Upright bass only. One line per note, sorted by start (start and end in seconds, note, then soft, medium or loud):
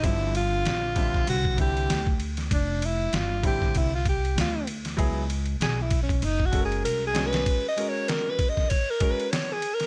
0.04 0.63 G1 loud
0.66 1.24 A#1 medium
1.27 1.86 C2 loud
1.90 2.48 D2 medium
2.51 3.10 F1 loud
3.13 3.42 G1 medium
3.44 3.73 A1 medium
3.76 4.34 C2 medium
4.36 4.95 D2 medium
4.98 5.57 C#2 loud
5.60 6.19 B1 medium
6.22 6.81 F#1 loud
6.84 7.43 C2 medium